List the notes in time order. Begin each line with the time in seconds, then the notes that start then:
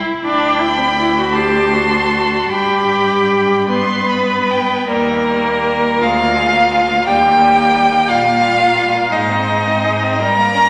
Already playing: E4
0.25 D2 D4 G5 B5
0.59 E4
0.68 D4
0.78 C4
0.88 D4
0.98 E4
1.17 F#4
1.34 G4 A5 C6
1.73 F#4
2.50 G2 G4 G5 B5
3.68 B3 B4 C6
4.09 B5
4.51 G5
4.88 D#2 G3 A#3 A#4
5.06 G3
5.25 G3
5.44 G3
5.62 G3
5.82 G3
6.00 D2 G#3 F4 F5
6.19 A#3
6.36 G#3
6.53 A#3
6.71 G#3
6.88 A#3
7.06 D#2 G3 G4 G5
7.23 A#3
7.40 G3
7.58 A#3
7.75 G3
7.91 A#3
8.08 A#2 G3 F4 F5
8.25 A#3
8.41 G3
8.58 A#3
8.76 G3
8.94 A#3
9.11 G#2 G#3 D#4 D#5
9.29 C4
9.49 G#3
9.67 C4
9.84 G#3
10.03 C4
10.20 G2 G3 A#4 A#5
10.37 A#3
10.55 C#4